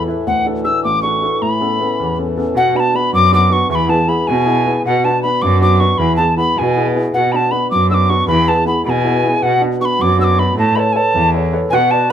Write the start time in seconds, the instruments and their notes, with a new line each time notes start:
Already playing: harmonium A2 E3
0.07 grand piano E4 A4 B4
0.27 grand piano D2, tin whistle F#5
0.46 grand piano D4 F#4 A4
0.65 grand piano D4 F#4 A4, tin whistle E6
0.84 grand piano A1, tin whistle D6
1.02 grand piano D4 F#4 A4, tin whistle C#6
1.22 grand piano D4 F#4 A4
1.42 grand piano A2, tin whistle B5
1.61 grand piano B3 C#4 A4
1.80 grand piano B3 C#4 A4
2.00 grand piano E2
2.18 grand piano B3 C#4 A4
2.37 grand piano B3 C#4 A4
2.55 cello B2, grand piano B2, tin whistle F#5
2.75 grand piano B3 D4 F#4, tin whistle B5
2.80 tin whistle A5
2.94 grand piano B3 D4 F#4, tin whistle B5
3.13 cello F#2, grand piano F#3, tin whistle D6
3.32 grand piano B3 D4 F#4, tin whistle D6
3.50 grand piano B3 D4 F#4, tin whistle C#6
3.70 cello E2, grand piano E3, tin whistle C#6
3.75 tin whistle B5
3.88 grand piano B3 E4 G#4, tin whistle A5
4.08 grand piano B3 E4 G#4, tin whistle B5
4.27 grand piano B2, cello B2, tin whistle G#5
4.46 grand piano B3 E4 G#4
4.66 grand piano B3 E4 G#4
4.85 grand piano B2, cello B2, tin whistle F#5
5.04 grand piano B3 D4 F#4, tin whistle A5
5.23 grand piano B3 D4 F#4, tin whistle B5
5.42 cello F#2, grand piano F#3, tin whistle D6
5.61 grand piano B3 D4 F#4, tin whistle D6
5.80 grand piano B3 D4 F#4, tin whistle C#6
5.98 cello E2, grand piano E3, tin whistle B5
6.16 grand piano B3 E4 G#4, tin whistle A5
6.37 grand piano B3 E4 G#4, tin whistle B5
6.54 cello B2, grand piano B2, tin whistle B5
6.58 tin whistle G#5
6.75 grand piano B3 E4 G#4
6.95 grand piano B3 E4 G#4
7.14 cello B2, grand piano B2, tin whistle F#5
7.32 grand piano B3 D4 F#4, tin whistle A5 B5
7.51 grand piano B3 D4 F#4, tin whistle B5
7.71 cello F#2, grand piano F#3, tin whistle D6
7.90 grand piano B3 D4 F#4, tin whistle E6
7.94 tin whistle D6
8.09 grand piano B3 D4 F#4, tin whistle C#6
8.28 cello E2, grand piano E3, tin whistle B5
8.48 grand piano B3 E4 G#4, tin whistle A5
8.65 grand piano B3 E4 G#4, tin whistle B5
8.85 cello B2, grand piano B2, tin whistle B5
8.90 tin whistle G#5
9.04 grand piano B3 E4 G#4
9.24 grand piano B3 E4 G#4
9.42 grand piano B2, cello B2, tin whistle F#5
9.61 grand piano B3 D4 F#4
9.80 grand piano B3 D4 F#4, tin whistle C#6
9.85 tin whistle B5
9.99 cello F#2, grand piano F#3, tin whistle D6
10.18 grand piano B3 D4 F#4, tin whistle E6
10.24 tin whistle D6
10.38 grand piano B3 D4 F#4, tin whistle B5
10.56 cello A2, grand piano A3, tin whistle A5
10.76 grand piano A4 B4 C#5, tin whistle A5 B5
10.93 grand piano A4 B4 C#5, tin whistle G#5 A5
11.14 cello E2, grand piano E3
11.34 grand piano A4 B4 C#5
11.53 grand piano A4 B4 C#5
11.70 cello B2, grand piano B3, hammered dulcimer F#4, tin whistle G#5
11.75 tin whistle F#5
11.91 grand piano F#4 B4 D5, tin whistle A5